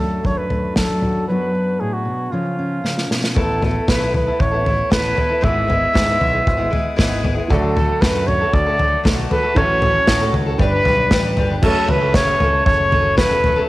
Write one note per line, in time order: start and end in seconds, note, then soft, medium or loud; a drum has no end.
0.00 0.22 F#2 medium
0.00 0.75 F#3 soft
0.00 0.49 A3 soft
0.00 0.23 D4 soft
0.00 1.02 F#4 soft
0.00 0.27 A4 medium
0.23 1.27 F#2 soft
0.23 0.76 D4 soft
0.23 0.39 C#5 medium
0.23 kick medium
0.23 floor tom medium
0.37 0.76 B4 medium
0.50 1.28 A3 soft
0.50 floor tom medium
0.76 1.25 F#3 medium
0.76 1.26 D4 soft
0.76 1.25 A4 medium
0.76 kick medium
0.76 snare medium
0.76 floor tom medium
1.02 1.29 F#4 soft
1.02 floor tom medium
1.28 1.80 F#2 soft
1.28 2.30 F#3 soft
1.28 2.30 B3 soft
1.28 2.30 D4 soft
1.28 1.54 F#4 soft
1.28 1.82 B4 medium
1.55 2.33 F#4 soft
1.80 2.07 A2 soft
1.80 1.95 G#4 medium
1.93 2.33 F#4 medium
2.05 2.32 B2 medium
2.32 2.83 C#3 medium
2.32 3.34 F3 soft
2.32 2.57 C#4 soft
2.32 3.10 F4 medium
2.59 3.33 C#4 soft
2.84 3.09 C#3 soft
2.84 snare soft
2.98 snare soft
3.10 3.36 B2 soft
3.10 snare medium
3.24 snare medium
3.35 3.78 A1 medium
3.35 3.60 A3 medium
3.35 3.61 B3 medium
3.35 3.62 E4 medium
3.35 3.63 A4 medium
3.35 3.62 A4 medium
3.35 kick medium
3.35 floor tom medium
3.61 3.86 A3 soft
3.61 3.87 B3 medium
3.61 3.88 E4 medium
3.61 3.88 A4 medium
3.61 3.90 A4 medium
3.61 floor tom medium
3.88 4.30 B1 medium
3.88 4.01 A3 medium
3.88 4.01 B3 medium
3.88 4.01 E4 medium
3.88 3.99 A4 medium
3.88 4.15 B4 medium
3.88 kick loud
3.88 snare loud
3.88 floor tom medium
4.00 4.28 B3 soft
4.00 4.27 E4 soft
4.00 4.25 A4 soft
4.14 4.42 B4 medium
4.14 floor tom medium
4.27 4.53 B3 soft
4.27 4.52 E4 soft
4.27 4.50 A4 soft
4.39 4.81 A1 medium
4.39 4.91 C#5 medium
4.39 kick medium
4.39 floor tom medium
4.51 4.64 B3 soft
4.51 4.65 E4 soft
4.51 4.65 A4 medium
4.64 4.89 A3 medium
4.64 4.90 B3 medium
4.64 4.90 E4 medium
4.64 4.91 A4 medium
4.64 floor tom medium
4.90 5.13 A1 medium
4.90 5.14 A3 medium
4.90 5.15 B3 medium
4.90 5.16 E4 medium
4.90 5.17 A4 medium
4.90 5.46 B4 medium
4.90 kick medium
4.90 snare medium
4.90 floor tom medium
5.16 5.30 A3 medium
5.16 5.30 B3 medium
5.16 5.29 E4 medium
5.16 5.27 A4 medium
5.16 floor tom medium
5.29 5.41 B3 soft
5.29 5.41 E4 soft
5.29 5.42 A4 medium
5.41 5.85 G#1 medium
5.41 5.68 G#2 medium
5.41 5.68 E3 medium
5.41 5.66 G#3 medium
5.41 5.67 B3 medium
5.41 5.68 E4 medium
5.41 5.68 G#4 medium
5.41 6.99 E5 loud
5.41 kick medium
5.41 floor tom medium
5.67 5.93 G#3 medium
5.67 5.93 B3 medium
5.67 5.94 E4 medium
5.67 5.94 G#4 medium
5.67 floor tom medium
5.93 6.07 G#2 medium
5.93 6.16 G#2 medium
5.93 6.07 E3 medium
5.93 6.08 G#3 medium
5.93 6.07 B3 medium
5.93 6.07 E4 medium
5.93 6.05 G#4 medium
5.93 kick loud
5.93 snare loud
5.93 floor tom medium
6.06 6.34 G#3 soft
6.06 6.33 B3 soft
6.06 6.32 E4 soft
6.06 6.31 G#4 medium
6.21 6.42 B1 medium
6.21 floor tom medium
6.32 6.58 G#3 soft
6.32 6.57 B3 medium
6.32 6.56 E4 medium
6.32 6.56 G#4 medium
6.47 6.68 G#1 medium
6.47 kick medium
6.47 floor tom medium
6.57 6.69 G#3 medium
6.57 6.70 B3 medium
6.57 6.71 E4 medium
6.57 6.71 G#4 medium
6.70 6.96 G#3 medium
6.70 6.97 B3 medium
6.70 6.97 E4 medium
6.70 6.97 G#4 medium
6.70 floor tom medium
6.96 7.40 G#1 medium
6.96 7.23 G#2 medium
6.96 7.23 E3 medium
6.96 7.21 G#3 medium
6.96 7.22 B3 medium
6.96 7.23 E4 medium
6.96 7.24 G#4 medium
6.96 kick medium
6.96 snare medium
6.96 floor tom medium
7.22 7.36 G#3 medium
7.22 7.36 B3 medium
7.22 7.35 E4 medium
7.22 7.34 G#4 medium
7.22 floor tom medium
7.35 7.50 G#3 soft
7.35 7.50 B3 soft
7.35 7.50 E4 soft
7.35 7.49 G#4 medium
7.48 9.53 D2 medium
7.48 7.92 D2 medium
7.48 7.76 D3 medium
7.48 9.53 D3 medium
7.48 9.52 F#3 medium
7.48 7.74 F#3 medium
7.48 7.75 A3 medium
7.48 9.52 D4 medium
7.48 7.76 F#4 medium
7.48 8.03 A4 medium
7.48 9.53 A4 medium
7.48 7.77 A4 medium
7.48 9.54 D5 medium
7.48 kick medium
7.48 floor tom medium
7.76 8.01 F#3 medium
7.76 8.01 A3 medium
7.76 8.02 F#4 medium
7.76 8.02 A4 medium
7.76 floor tom medium
8.01 8.44 F#2 medium
8.01 8.14 D3 medium
8.01 8.15 F#3 medium
8.01 8.15 A3 medium
8.01 8.15 F#4 medium
8.01 8.13 A4 medium
8.01 8.28 B4 medium
8.01 kick loud
8.01 snare loud
8.01 floor tom medium
8.14 8.42 A3 soft
8.14 8.41 F#4 soft
8.14 8.40 A4 soft
8.27 8.55 C#5 medium
8.27 floor tom medium
8.41 8.68 A3 soft
8.41 8.67 F#4 soft
8.41 8.65 A4 soft
8.53 8.95 D2 medium
8.53 9.05 D5 loud
8.53 kick loud
8.53 floor tom medium
8.66 8.78 A3 soft
8.66 8.79 F#4 soft
8.66 8.79 A4 medium
8.78 9.03 F#3 medium
8.78 9.04 A3 medium
8.78 9.04 F#4 medium
8.78 9.04 A4 medium
8.78 floor tom medium
9.04 9.26 B1 medium
9.04 9.30 D3 medium
9.04 9.29 F#3 medium
9.04 9.30 A3 medium
9.04 9.31 F#4 medium
9.04 9.31 A4 medium
9.04 kick loud
9.04 snare loud
9.04 floor tom medium
9.30 9.43 F#3 medium
9.30 9.44 A3 medium
9.30 9.43 F#4 medium
9.30 9.41 A4 medium
9.30 9.58 B4 loud
9.30 floor tom medium
9.43 9.54 A3 soft
9.43 9.56 F#4 soft
9.43 9.56 A4 medium
9.55 9.98 A1 loud
9.55 10.56 A1 medium
9.55 10.56 A2 medium
9.55 10.57 F#3 medium
9.55 9.80 A3 medium
9.55 10.57 C#4 medium
9.55 9.81 C#4 medium
9.55 9.82 F#4 medium
9.55 10.58 A4 medium
9.55 9.83 A4 medium
9.55 10.34 C#5 loud
9.55 10.58 C#5 medium
9.55 kick loud
9.55 floor tom medium
9.81 10.07 A3 medium
9.81 10.08 C#4 medium
9.81 10.08 F#4 medium
9.81 10.09 A4 medium
9.81 floor tom medium
10.07 10.29 A2 loud
10.07 10.21 A3 medium
10.07 10.22 C#4 medium
10.07 10.21 F#4 medium
10.07 10.19 A4 medium
10.07 kick loud
10.07 snare loud
10.07 floor tom medium
10.21 10.48 C#4 medium
10.21 10.47 F#4 medium
10.21 10.45 A4 medium
10.32 10.54 C#2 medium
10.32 floor tom medium
10.46 10.59 C#4 soft
10.46 10.59 F#4 soft
10.46 10.59 A4 medium
10.58 10.80 G1 medium
10.58 11.59 G1 medium
10.58 11.59 G2 medium
10.58 11.60 G3 medium
10.58 10.72 G3 medium
10.58 10.72 D4 medium
10.58 11.60 D4 medium
10.58 10.72 G4 medium
10.58 11.33 B4 loud
10.58 11.61 B4 medium
10.58 10.71 B4 medium
10.58 11.62 D5 medium
10.58 kick medium
10.58 floor tom medium
10.72 10.85 D4 soft
10.72 10.86 G4 medium
10.72 10.85 B4 medium
10.84 11.08 B1 medium
10.84 11.11 G3 medium
10.84 11.11 D4 medium
10.84 11.12 G4 medium
10.84 11.13 B4 medium
10.84 floor tom medium
11.11 11.34 A1 medium
11.11 11.36 G3 medium
11.11 11.37 D4 medium
11.11 11.38 G4 medium
11.11 11.38 B4 medium
11.11 kick loud
11.11 snare loud
11.11 floor tom medium
11.37 11.60 G1 medium
11.37 11.50 G3 medium
11.37 11.51 D4 medium
11.37 11.50 G4 medium
11.37 11.49 B4 medium
11.37 floor tom medium
11.50 11.64 D4 soft
11.50 11.63 G4 medium
11.50 11.63 B4 medium
11.62 11.73 F#1 medium
11.62 13.65 F#1 medium
11.62 12.02 F#2 medium
11.62 13.65 F#2 medium
11.62 12.02 C#3 medium
11.62 13.64 F#3 medium
11.62 12.02 F#3 medium
11.62 13.64 A3 medium
11.62 12.02 A3 medium
11.62 13.65 C#4 medium
11.62 12.02 C#4 medium
11.62 11.91 A4 medium
11.62 13.65 A4 medium
11.62 12.00 A4 medium
11.62 13.66 C#5 medium
11.62 kick loud
11.62 floor tom medium
11.62 crash medium
11.88 12.16 C#2 medium
11.88 12.14 B4 medium
11.88 floor tom medium
12.01 12.14 F#3 soft
12.01 12.15 A3 soft
12.01 12.15 C#4 soft
12.01 12.14 A4 medium
12.14 12.35 F#1 medium
12.14 12.40 F#2 medium
12.14 12.41 C#3 medium
12.14 12.39 F#3 medium
12.14 12.40 A3 medium
12.14 12.41 C#4 medium
12.14 12.41 A4 medium
12.14 12.63 C#5 loud
12.14 kick loud
12.14 snare loud
12.14 floor tom medium
12.40 12.61 C#2 medium
12.40 12.89 F#3 medium
12.40 12.91 A3 medium
12.40 12.92 C#4 medium
12.40 12.92 A4 medium
12.40 floor tom medium
12.66 13.17 F#1 medium
12.66 13.14 C#5 loud
12.66 kick loud
12.66 floor tom medium
12.90 13.17 F#3 medium
12.90 13.17 A3 medium
12.90 13.17 C#4 medium
12.90 13.18 A4 medium
12.90 floor tom medium
13.17 13.59 E1 medium
13.17 13.30 F#2 medium
13.17 13.30 C#3 medium
13.17 13.31 F#3 medium
13.17 13.30 A3 medium
13.17 13.29 C#4 medium
13.17 13.28 A4 medium
13.17 13.65 B4 loud
13.17 kick loud
13.17 snare medium
13.17 floor tom medium
13.29 13.42 F#3 soft
13.29 13.43 A3 soft
13.29 13.43 C#4 soft
13.29 13.42 A4 medium
13.43 13.56 F#3 medium
13.43 13.57 A3 medium
13.43 13.56 C#4 medium
13.43 13.55 A4 medium
13.43 floor tom medium
13.56 13.69 F#3 soft
13.56 13.68 A3 soft
13.56 13.69 C#4 soft
13.56 13.69 A4 medium